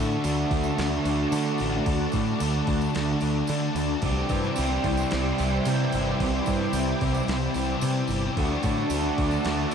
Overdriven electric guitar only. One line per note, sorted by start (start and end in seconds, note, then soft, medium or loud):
0.00 4.02 D3 medium
0.00 4.03 A3 medium
0.00 4.05 D4 medium
0.00 4.04 F#4 medium
4.03 8.36 C3 medium
4.03 8.36 E3 medium
4.03 8.37 G3 medium
4.03 8.37 C4 medium
4.03 8.38 G4 medium
8.37 9.75 D3 medium
8.37 9.75 A3 medium
8.37 9.75 D4 medium
8.37 9.75 F#4 medium